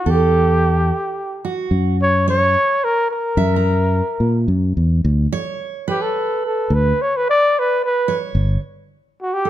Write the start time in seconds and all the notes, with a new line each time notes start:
Already playing: F#4
0.06 E2 A4
0.10 G4
1.45 F#4
1.71 F#2
2.02 C#5
2.28 C#5
2.84 A#4
3.11 A#4
3.37 F#2 E5
3.56 A#5
4.20 A#2
4.48 F#2
4.77 E2
5.05 D2
5.32 C#5
5.88 G4 B4
6.02 A4
6.46 A4
6.70 D2 B4
7.02 C#5
7.16 B4
7.30 D5
7.59 B4
7.84 B4
8.08 C#5
8.35 G1
9.22 F#4
9.34 G4
9.45 A4